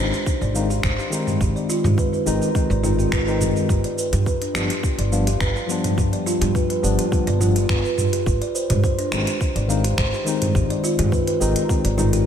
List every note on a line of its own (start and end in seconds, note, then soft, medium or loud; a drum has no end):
0.00 0.11 D#3 medium
0.00 0.12 G#3 medium
0.00 0.12 C4 medium
0.00 0.13 D#4 medium
0.00 0.12 G4 medium
0.13 0.25 G4 medium
0.13 shaker soft
0.26 0.41 G4 medium
0.26 kick loud
0.26 shaker soft
0.41 0.79 G#1 loud
0.41 0.54 D5 medium
0.41 shaker soft
0.54 0.69 D#3 medium
0.54 0.69 G#3 medium
0.54 0.69 C4 medium
0.54 0.69 D#4 medium
0.54 0.69 F5 medium
0.54 shaker medium
0.70 0.83 G4 medium
0.70 shaker soft
0.83 0.95 G#1 medium
0.83 0.97 C5 medium
0.83 finger snap medium
0.83 kick loud
0.83 shaker soft
0.99 1.11 G4 medium
0.99 shaker soft
1.10 2.22 D#3 medium
1.10 2.23 G#3 medium
1.10 2.24 C4 medium
1.10 1.26 G4 medium
1.10 shaker medium
1.14 2.24 D#4 loud
1.27 1.40 G4 medium
1.27 mid tom medium
1.27 shaker soft
1.41 1.53 G#1 medium
1.41 1.54 G4 loud
1.41 kick loud
1.41 shaker soft
1.56 1.68 D5 medium
1.56 shaker soft
1.69 1.78 F4 medium
1.69 shaker medium
1.84 1.95 G#2 loud
1.84 1.97 G4 medium
1.84 mid tom medium
1.84 shaker soft
1.98 2.12 B4 medium
1.98 kick loud
1.98 shaker soft
2.13 2.21 B4 medium
2.13 shaker soft
2.25 2.38 G#1 medium
2.25 2.47 D#3 medium
2.25 2.48 G#3 medium
2.25 2.48 C4 medium
2.25 2.48 D#4 loud
2.25 2.40 G4 medium
2.25 shaker medium
2.42 2.54 G4 medium
2.42 shaker soft
2.54 2.69 D#3 medium
2.54 2.69 G#3 medium
2.54 2.69 C4 medium
2.54 2.70 D#4 medium
2.54 2.69 G4 medium
2.54 kick loud
2.54 shaker soft
2.70 3.07 G#1 loud
2.70 2.82 D5 medium
2.70 shaker soft
2.83 3.23 D#3 medium
2.83 3.24 G#3 medium
2.83 3.24 C4 medium
2.83 3.24 D#4 loud
2.83 2.92 F4 medium
2.83 mid tom medium
2.83 shaker medium
2.99 3.11 G4 medium
2.99 shaker soft
3.12 3.51 G#1 medium
3.12 3.26 B4 medium
3.12 finger snap medium
3.12 kick loud
3.12 shaker soft
3.26 3.67 D#3 medium
3.26 3.68 G#3 medium
3.26 3.68 C4 medium
3.26 3.68 D#4 loud
3.26 3.35 B4 medium
3.26 shaker soft
3.41 3.55 G4 medium
3.41 mid tom medium
3.41 shaker medium
3.56 3.68 G4 medium
3.56 shaker soft
3.69 3.81 G1 medium
3.69 3.83 G4 medium
3.69 kick loud
3.69 shaker soft
3.84 3.97 D5 medium
3.84 closed hi-hat soft
3.84 shaker soft
3.98 4.12 B4 medium
3.98 shaker medium
4.13 4.23 G2 medium
4.13 4.26 G4 medium
4.13 closed hi-hat medium
4.13 mid tom medium
4.13 shaker soft
4.26 4.40 B4 medium
4.26 kick loud
4.26 shaker soft
4.42 4.49 D4 medium
4.42 closed hi-hat soft
4.42 shaker soft
4.54 4.67 G1 medium
4.54 4.68 F3 medium
4.54 4.69 G3 medium
4.54 4.69 B3 medium
4.54 4.69 D4 medium
4.54 4.69 G4 medium
4.54 finger snap medium
4.54 shaker medium
4.70 4.83 G4 medium
4.70 closed hi-hat medium
4.70 shaker soft
4.83 4.98 G4 medium
4.83 kick loud
4.83 shaker soft
4.98 5.36 G1 medium
4.98 5.11 D5 medium
4.98 closed hi-hat soft
4.98 shaker soft
5.11 5.26 F3 medium
5.11 5.26 G3 medium
5.11 5.26 B3 medium
5.11 5.27 D4 medium
5.11 5.26 F5 medium
5.11 shaker medium
5.27 5.40 G4 loud
5.27 closed hi-hat medium
5.27 shaker soft
5.40 5.52 G1 medium
5.40 5.54 B4 medium
5.40 finger snap medium
5.40 kick loud
5.40 shaker soft
5.56 5.68 G4 medium
5.56 shaker soft
5.67 6.79 F3 medium
5.67 6.80 G3 medium
5.67 6.81 B3 medium
5.67 6.81 D4 loud
5.67 5.83 G4 medium
5.67 shaker medium
5.84 5.97 G4 medium
5.84 closed hi-hat medium
5.84 mid tom medium
5.84 shaker soft
5.98 6.10 G1 medium
5.98 6.12 G4 loud
5.98 kick medium
5.98 shaker soft
6.13 6.25 D5 medium
6.13 closed hi-hat soft
6.13 shaker soft
6.26 6.35 F4 medium
6.26 shaker medium
6.41 6.52 G2 loud
6.41 6.54 G4 medium
6.41 closed hi-hat medium
6.41 mid tom medium
6.41 shaker soft
6.55 6.69 B4 medium
6.55 kick medium
6.55 shaker soft
6.70 6.78 B4 medium
6.70 closed hi-hat soft
6.70 shaker soft
6.82 6.95 G1 medium
6.82 7.04 F3 medium
6.82 7.05 G3 medium
6.82 7.05 B3 medium
6.82 7.05 D4 loud
6.82 6.97 G4 medium
6.82 shaker medium
6.99 7.11 G4 medium
6.99 closed hi-hat medium
6.99 shaker soft
7.11 7.26 F3 medium
7.11 7.26 G3 medium
7.11 7.26 B3 medium
7.11 7.27 D4 medium
7.11 7.26 G4 medium
7.11 kick loud
7.11 shaker soft
7.27 7.64 G1 loud
7.27 7.39 D5 medium
7.27 closed hi-hat soft
7.27 shaker soft
7.39 7.54 F3 medium
7.39 7.54 G3 medium
7.39 7.55 B3 medium
7.39 7.55 D4 loud
7.39 7.49 F4 medium
7.39 mid tom medium
7.39 shaker medium
7.56 7.69 G4 medium
7.56 closed hi-hat medium
7.56 shaker soft
7.69 7.81 G1 medium
7.69 7.83 B4 medium
7.69 finger snap medium
7.69 kick loud
7.69 shaker soft
7.84 7.92 B4 medium
7.84 shaker soft
7.98 8.11 G4 medium
7.98 mid tom medium
7.98 shaker medium
8.13 8.25 G4 medium
8.13 closed hi-hat medium
8.13 shaker soft
8.26 8.38 G#1 medium
8.26 8.40 G4 medium
8.26 kick loud
8.26 shaker soft
8.42 8.54 D5 medium
8.42 closed hi-hat soft
8.42 shaker soft
8.55 8.69 C5 medium
8.55 shaker medium
8.70 8.81 G#2 loud
8.70 8.83 G4 medium
8.70 closed hi-hat medium
8.70 mid tom medium
8.70 shaker soft
8.84 8.97 C5 medium
8.84 kick loud
8.84 shaker soft
8.99 9.06 D4 medium
8.99 closed hi-hat soft
8.99 shaker soft
9.11 9.24 G#1 medium
9.11 9.25 D#3 medium
9.11 9.26 G#3 medium
9.11 9.26 C4 medium
9.11 9.26 D#4 medium
9.11 9.26 G4 medium
9.11 finger snap medium
9.11 shaker medium
9.27 9.40 G4 medium
9.27 closed hi-hat medium
9.27 shaker soft
9.41 9.55 G4 medium
9.41 kick loud
9.41 shaker soft
9.55 9.93 G#1 loud
9.55 9.68 D5 medium
9.55 closed hi-hat soft
9.55 shaker soft
9.68 9.83 D#3 medium
9.68 9.83 G#3 medium
9.68 9.83 C4 medium
9.68 9.84 D#4 loud
9.68 9.83 F5 medium
9.68 shaker medium
9.84 9.97 G4 medium
9.84 closed hi-hat medium
9.84 shaker soft
9.98 10.10 G#1 medium
9.98 10.11 C5 medium
9.98 finger snap medium
9.98 kick loud
9.98 shaker soft
10.13 10.25 G4 medium
10.13 shaker soft
10.24 11.37 D#3 medium
10.24 11.37 G#3 medium
10.24 11.38 C4 medium
10.24 11.38 D#4 loud
10.24 10.41 G4 medium
10.24 shaker medium
10.42 10.54 G4 medium
10.42 closed hi-hat medium
10.42 mid tom medium
10.42 shaker soft
10.55 10.67 G#1 medium
10.55 10.69 G4 loud
10.55 kick loud
10.55 shaker soft
10.70 10.82 D5 medium
10.70 closed hi-hat soft
10.70 shaker soft
10.84 10.92 F4 loud
10.84 shaker medium
10.99 11.09 G#2 loud
10.99 11.12 G4 loud
10.99 closed hi-hat medium
10.99 mid tom medium
10.99 shaker soft
11.12 11.26 B4 medium
11.12 kick loud
11.12 shaker soft
11.27 11.35 B4 medium
11.27 closed hi-hat soft
11.27 shaker soft
11.40 11.53 G#1 medium
11.40 11.62 D#3 medium
11.40 11.62 G#3 medium
11.40 11.62 C4 medium
11.40 11.63 D#4 loud
11.40 11.54 G4 medium
11.40 shaker medium
11.56 11.68 G4 medium
11.56 closed hi-hat medium
11.56 shaker soft
11.68 11.83 D#3 medium
11.68 11.83 G#3 medium
11.68 11.83 C4 medium
11.68 11.84 D#4 medium
11.68 11.83 G4 medium
11.68 kick loud
11.68 shaker soft
11.84 12.22 G#1 loud
11.84 11.97 D5 medium
11.84 closed hi-hat soft
11.84 shaker soft
11.97 12.26 D#3 medium
11.97 12.26 G#3 medium
11.97 12.26 C4 medium
11.97 12.26 D#4 loud
11.97 12.07 F4 medium
11.97 mid tom medium
11.97 shaker medium
12.13 12.26 G4 medium
12.13 closed hi-hat medium
12.13 shaker soft